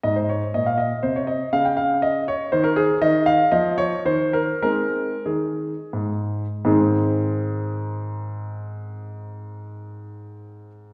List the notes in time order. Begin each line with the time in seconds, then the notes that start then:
0.03 G#2 D#5
0.16 C5
0.29 C#5
0.54 A#2 D#5
0.66 F5
0.78 D#5
1.03 C3 C5
1.16 C#5
1.27 D#5
1.53 C#3 F5
1.65 G5
1.77 F5
2.02 D#5
2.28 C#5
2.52 D#3 C5
2.64 A#4
2.76 G#4
3.01 D#3 D#5
3.26 F5
3.52 F3 D#5
3.78 C#5
4.05 D#3 C5
4.33 A#4
4.62 G#3 C4 D#4 A#4
5.26 D#3 G#4
5.93 G#2
6.65 G#2 D#3 C4 D#4 G#4 C5